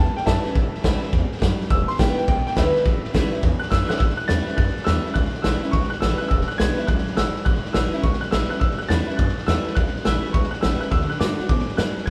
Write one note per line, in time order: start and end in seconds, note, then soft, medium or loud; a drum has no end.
0.00 0.10 E2 loud
0.00 0.53 E2 medium
0.00 0.16 A5 medium
0.16 0.26 G5 medium
0.16 muted upright bass stroke medium
0.16 snare soft
0.26 0.39 F#2 loud
0.26 0.44 E3 medium
0.26 0.44 A3 medium
0.26 0.45 C#4 medium
0.26 0.44 E4 medium
0.26 1.09 E5 medium
0.26 1.10 A5 loud
0.26 kick medium
0.26 snare loud
0.26 hi-hat pedal medium
0.45 0.56 C#4 medium
0.45 0.55 E4 medium
0.45 muted upright bass stroke medium
0.45 snare soft
0.55 0.67 A1 loud
0.55 1.11 A2 medium
0.55 kick loud
0.55 snare soft
0.74 muted upright bass stroke medium
0.74 snare soft
0.83 0.96 C#2 loud
0.83 1.11 E3 medium
0.83 1.12 A3 medium
0.83 1.12 C#4 medium
0.83 1.12 E4 loud
0.83 kick medium
0.83 snare loud
0.83 hi-hat pedal medium
1.03 muted upright bass stroke medium
1.03 snare soft
1.13 1.25 E2 medium
1.13 1.41 G#2 medium
1.13 kick loud
1.13 snare soft
1.32 muted upright bass stroke medium
1.32 snare soft
1.37 snare soft
1.42 1.69 F#2 medium
1.42 1.54 F#2 medium
1.42 kick medium
1.42 snare loud
1.42 hi-hat pedal medium
1.60 muted upright bass stroke medium
1.60 snare soft
1.70 1.83 E1 loud
1.70 2.26 E2 medium
1.70 1.88 E6 loud
1.70 kick loud
1.70 snare soft
1.88 1.98 C6 loud
1.88 snare soft
1.98 2.11 G#1 loud
1.98 2.16 D3 medium
1.98 2.17 G#3 medium
1.98 2.17 B3 loud
1.98 2.16 E4 loud
1.98 2.16 G5 medium
1.98 kick loud
1.98 snare loud
1.98 hi-hat pedal medium
2.17 2.28 B3 medium
2.17 2.27 E4 medium
2.17 2.27 G5 medium
2.17 muted upright bass stroke medium
2.17 snare soft
2.28 2.40 B1 loud
2.28 2.83 B2 medium
2.28 2.45 G5 medium
2.28 kick loud
2.28 snare soft
2.46 2.57 G5 loud
2.46 snare soft
2.56 2.69 D2 loud
2.56 2.74 D3 medium
2.56 2.74 G#3 medium
2.56 2.75 B3 loud
2.56 2.73 E4 medium
2.56 3.39 B4 medium
2.56 3.41 E5 loud
2.56 kick medium
2.56 snare loud
2.56 hi-hat pedal medium
2.74 2.85 B3 medium
2.74 2.85 E4 medium
2.74 snare soft
2.85 2.98 A1 medium
2.85 3.41 A2 medium
2.85 kick loud
2.85 snare soft
3.04 muted upright bass stroke medium
3.04 snare soft
3.14 3.26 C#2 loud
3.14 3.32 E3 loud
3.14 3.32 A3 medium
3.14 3.32 C#4 loud
3.14 3.31 E4 loud
3.14 kick medium
3.14 snare loud
3.14 hi-hat pedal loud
3.32 3.43 C#4 soft
3.32 3.42 E4 medium
3.32 muted upright bass stroke medium
3.32 snare soft
3.43 3.98 E2 medium
3.43 3.55 E2 medium
3.43 kick loud
3.43 snare soft
3.59 3.71 F#6 loud
3.59 muted upright bass stroke medium
3.59 snare soft
3.70 3.84 F#2 medium
3.70 3.89 E3 medium
3.70 3.89 A3 medium
3.70 3.90 C#4 loud
3.70 3.88 E4 medium
3.70 3.90 E6 loud
3.70 kick medium
3.70 snare medium
3.70 hi-hat pedal medium
3.89 4.00 C#4 soft
3.89 4.00 E4 medium
3.89 4.00 F#6 loud
3.89 snare loud
3.98 4.13 A1 medium
3.98 4.56 A2 medium
3.98 4.03 E6 loud
3.98 kick loud
3.98 snare soft
4.10 snare soft
4.17 4.29 F#6 loud
4.17 snare soft
4.28 4.42 E2 medium
4.28 4.47 E3 medium
4.28 4.47 A3 medium
4.28 4.48 C#4 medium
4.28 4.47 E4 medium
4.28 4.58 A6 loud
4.28 snare loud
4.28 hi-hat pedal medium
4.48 4.58 C#4 soft
4.48 4.58 E4 medium
4.48 muted upright bass stroke medium
4.48 snare soft
4.57 5.14 E2 medium
4.57 4.70 F#2 medium
4.57 4.87 F#6 medium
4.57 kick loud
4.57 snare soft
4.67 snare soft
4.77 muted upright bass stroke medium
4.77 snare soft
4.84 4.99 E2 medium
4.84 5.05 E3 medium
4.84 5.05 A3 medium
4.84 5.05 C#4 loud
4.84 5.15 E6 loud
4.84 snare loud
4.84 hi-hat pedal medium
4.88 5.04 E4 medium
5.05 5.16 C#4 soft
5.05 5.15 E4 medium
5.05 muted upright bass stroke medium
5.05 snare soft
5.14 5.28 C#2 medium
5.14 5.71 A2 medium
5.14 5.44 F#6 loud
5.14 kick loud
5.14 snare soft
5.25 snare soft
5.34 muted upright bass stroke medium
5.34 snare soft
5.42 5.57 A1 medium
5.42 5.62 E3 medium
5.42 5.63 A3 medium
5.42 5.63 C#4 medium
5.42 5.73 E6 medium
5.42 snare loud
5.42 hi-hat pedal loud
5.46 5.61 E4 loud
5.63 5.73 C#4 medium
5.63 5.73 E4 medium
5.63 muted upright bass stroke medium
5.63 snare soft
5.71 5.86 C#2 medium
5.71 6.29 E2 medium
5.71 5.91 C#6 loud
5.71 kick loud
5.71 snare soft
5.83 snare soft
5.90 6.00 F#6 medium
5.90 muted upright bass stroke medium
5.90 snare soft
6.00 6.14 A1 medium
6.00 6.20 E3 medium
6.00 6.20 A3 medium
6.00 6.20 C#4 loud
6.00 6.19 E4 medium
6.00 6.20 E6 medium
6.00 snare loud
6.00 hi-hat pedal medium
6.18 6.30 E4 medium
6.18 6.23 F#6 medium
6.18 muted upright bass stroke medium
6.18 snare soft
6.22 6.31 C#4 soft
6.28 6.44 E1 loud
6.28 6.86 E2 medium
6.28 6.49 E6 loud
6.28 kick loud
6.28 snare soft
6.40 snare soft
6.48 6.59 F#6 medium
6.48 muted upright bass stroke medium
6.48 snare soft
6.58 6.72 B1 loud
6.58 6.77 D3 medium
6.58 6.78 G#3 medium
6.58 6.78 B3 loud
6.58 6.77 E4 medium
6.58 6.88 G#6 loud
6.58 snare loud
6.58 hi-hat pedal loud
6.78 6.88 B3 medium
6.78 6.88 E4 medium
6.78 snare soft
6.87 7.01 C#2 medium
6.87 7.16 F#2 medium
6.87 7.17 F#6 medium
6.87 kick loud
6.87 snare soft
6.98 snare soft
7.07 muted upright bass stroke medium
7.07 snare soft
7.17 7.29 G#1 medium
7.17 7.45 G#2 medium
7.17 7.47 E6 loud
7.17 snare loud
7.17 hi-hat pedal medium
7.36 muted upright bass stroke medium
7.36 snare soft
7.45 7.59 A1 medium
7.45 8.02 A2 medium
7.45 7.72 F#6 loud
7.45 kick loud
7.45 snare soft
7.55 snare soft
7.65 muted upright bass stroke medium
7.65 snare soft
7.73 7.87 A1 medium
7.73 7.92 E3 medium
7.73 7.93 A3 medium
7.73 7.93 C#4 medium
7.73 7.92 E4 medium
7.73 8.04 E6 medium
7.73 snare loud
7.73 hi-hat pedal medium
7.93 8.04 C#4 medium
7.93 8.03 E4 medium
7.93 muted upright bass stroke medium
7.93 snare soft
8.03 8.16 C#2 medium
8.03 8.59 E2 medium
8.03 8.22 C#6 medium
8.03 kick loud
8.03 snare soft
8.13 snare soft
8.21 8.32 F#6 medium
8.21 muted upright bass stroke medium
8.21 snare soft
8.31 8.45 A1 medium
8.31 8.50 E3 medium
8.31 8.50 A3 medium
8.31 8.50 C#4 medium
8.31 8.49 E4 loud
8.31 8.51 E6 medium
8.31 snare loud
8.31 hi-hat pedal medium
8.50 8.61 C#4 soft
8.50 8.61 E4 medium
8.50 8.61 F#6 medium
8.50 snare soft
8.60 8.74 A1 medium
8.60 9.16 A2 medium
8.60 8.80 E6 medium
8.60 kick loud
8.60 snare soft
8.71 snare soft
8.78 8.90 F#6 medium
8.78 muted upright bass stroke medium
8.78 snare soft
8.89 9.02 E2 medium
8.89 9.07 E3 medium
8.89 9.08 A3 medium
8.89 9.08 C#4 medium
8.89 9.06 E4 loud
8.89 9.19 A6 loud
8.89 snare loud
8.89 hi-hat pedal medium
9.07 9.19 C#4 medium
9.07 9.18 E4 medium
9.07 muted upright bass stroke medium
9.07 snare soft
9.17 9.74 E2 loud
9.17 9.32 F#2 medium
9.17 9.48 F#6 medium
9.17 kick loud
9.17 snare soft
9.29 snare soft
9.38 muted upright bass stroke medium
9.38 snare soft
9.46 9.60 E2 loud
9.46 9.75 E3 medium
9.46 9.76 A3 medium
9.46 9.76 C#4 loud
9.46 9.76 E4 medium
9.46 9.77 E6 loud
9.46 snare loud
9.46 hi-hat pedal medium
9.66 muted upright bass stroke medium
9.66 snare soft
9.75 9.89 C#2 medium
9.75 10.32 A2 medium
9.75 10.06 F#6 loud
9.75 kick loud
9.75 snare soft
9.86 snare soft
9.96 muted upright bass stroke medium
9.96 snare soft
10.05 10.18 A1 loud
10.05 10.33 E3 medium
10.05 10.33 A3 loud
10.05 10.33 C#4 medium
10.05 10.34 E4 medium
10.05 10.35 E6 loud
10.05 snare loud
10.05 hi-hat pedal medium
10.24 muted upright bass stroke medium
10.24 snare soft
10.33 10.47 C#2 loud
10.33 10.90 E2 medium
10.33 10.53 C#6 medium
10.33 kick loud
10.33 snare soft
10.43 snare soft
10.51 10.62 F#6 medium
10.51 muted upright bass stroke medium
10.51 snare soft
10.61 10.76 A1 medium
10.61 10.81 E3 medium
10.61 10.81 A3 medium
10.61 10.81 C#4 medium
10.61 10.80 E4 medium
10.61 10.81 E6 medium
10.61 snare loud
10.61 hi-hat pedal medium
10.80 10.92 C#4 medium
10.80 10.91 E4 medium
10.80 10.92 F#6 medium
10.80 muted upright bass stroke medium
10.80 snare soft
10.91 11.04 D2 medium
10.91 11.19 D3 medium
10.91 11.11 E6 medium
10.91 kick loud
10.91 snare soft
11.01 snare soft
11.10 11.21 F#6 medium
11.10 snare soft
11.20 11.33 A2 loud
11.20 11.38 D3 medium
11.20 11.39 A3 medium
11.20 11.39 D4 medium
11.20 11.38 F#4 medium
11.20 11.47 D6 medium
11.20 snare loud
11.20 hi-hat pedal loud
11.39 11.50 D4 medium
11.39 11.49 F#4 medium
11.39 muted upright bass stroke medium
11.39 snare soft
11.49 11.78 G#2 medium
11.49 11.62 B2 medium
11.49 11.79 D6 medium
11.49 kick loud
11.49 snare soft
11.59 snare soft
11.68 muted upright bass stroke medium
11.68 snare soft
11.77 12.06 F#2 medium
11.77 11.91 A2 medium
11.77 12.08 F#6 medium
11.77 snare loud
11.77 hi-hat pedal medium
11.97 muted upright bass stroke medium
11.97 snare soft
12.06 12.10 G#6 medium